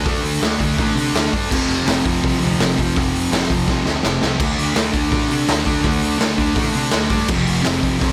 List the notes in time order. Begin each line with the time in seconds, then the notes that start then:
0.03 D2 D3 A3, kick, open hi-hat
0.09 D4
0.24 D2, open hi-hat
0.41 D2 D3 A3, snare, clap, open hi-hat
0.45 D4
0.59 D2 D4, kick, open hi-hat
0.64 A3
0.78 A1 D3 A3 D4, kick, open hi-hat
0.95 C3 D4, open hi-hat
1.00 A3
1.13 D2, snare, clap, open hi-hat
1.32 G2 D4, kick, open hi-hat
1.37 A3
1.50 F1 F2 C3, kick, crash
1.55 F3
1.68 F1, open hi-hat
1.85 F1 F2 C3, snare, clap, open hi-hat
1.90 F3
2.03 F1 F3, kick, open hi-hat
2.07 C3
2.22 C2 F2 C3 F3, kick, open hi-hat
2.39 D2 F3, open hi-hat
2.45 C3
2.58 F1, snare, clap, open hi-hat
2.77 F1 F3, kick, open hi-hat
2.82 C3
2.96 F1 F2 C3, kick, open hi-hat
3.00 F3
3.13 F1, open hi-hat
3.30 F1 F2 C3, snare, clap, open hi-hat
3.35 F3
3.49 F1 F3, kick, open hi-hat
3.54 C3
3.67 C2 F2 C3, kick, snare
3.72 F3
3.85 D2 F3, snare
3.91 C3
4.03 F1, snare, clap
4.22 C2 F3, snare
4.27 C3
4.38 D2 D3 A3, kick, crash
4.44 D4
4.58 D2, open hi-hat
4.73 D2 D3 A3, snare, clap, open hi-hat
4.78 D4
4.93 D2 D4, kick, open hi-hat
4.97 A3
5.09 A1 D3 A3, kick, open hi-hat
5.14 D4
5.29 C3 D4, open hi-hat
5.34 A3
5.48 D2, snare, clap, open hi-hat
5.65 D2 A3 D4, kick, open hi-hat
5.81 D2 D3 A3, kick, open hi-hat
5.86 D4
6.02 D2, open hi-hat
6.18 D2 D3 A3, snare, clap, open hi-hat
6.23 D4
6.37 D2 D4, kick, open hi-hat
6.42 A3
6.55 A1 D3 A3, kick, open hi-hat
6.60 D4
6.73 C3 D4, open hi-hat
6.78 A3
6.91 D2, snare, clap, open hi-hat
7.09 G2 D4, kick, open hi-hat
7.14 A3
7.28 F1 F2 C3, kick, crash
7.34 F3
7.47 F1, open hi-hat
7.63 F1 F2 C3, snare, clap, open hi-hat
7.67 F3
7.82 F1 F3, kick, open hi-hat
7.86 C3
8.00 C2 F2 C3, kick, open hi-hat
8.04 F3